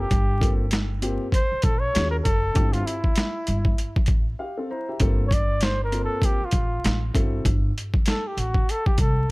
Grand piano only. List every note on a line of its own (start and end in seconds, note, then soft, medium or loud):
0.40 0.63 A#3 medium
0.40 0.64 C4 medium
0.40 0.64 F4 medium
0.40 0.64 A4 medium
1.02 1.25 A#3 medium
1.02 1.25 C4 medium
1.02 1.25 F4 medium
1.02 1.25 G4 medium
1.93 2.16 C#4 medium
1.93 2.17 F4 medium
1.93 2.17 F#4 medium
1.93 2.17 G#4 medium
2.54 2.92 C4 medium
2.54 2.93 E4 medium
2.54 2.93 F4 medium
2.54 2.93 G4 medium
4.39 4.56 G4 medium
4.39 4.68 F5 medium
4.57 4.70 C4 medium
4.57 4.69 A4 medium
4.70 4.87 E4 medium
4.70 4.87 C5 medium
4.70 4.99 A#5 medium
4.89 5.17 G4 medium
4.89 5.17 E5 medium
5.00 5.23 A#3 medium
5.00 5.23 C4 medium
5.00 5.24 F4 medium
5.00 5.24 A4 medium
5.92 6.37 A#3 medium
5.92 6.37 C4 medium
5.92 6.37 F4 medium
5.92 6.00 A4 medium
6.00 6.41 A#4 medium
7.14 7.45 C4 medium
7.14 7.45 E4 medium
7.14 7.45 F#4 medium
7.14 7.46 A4 medium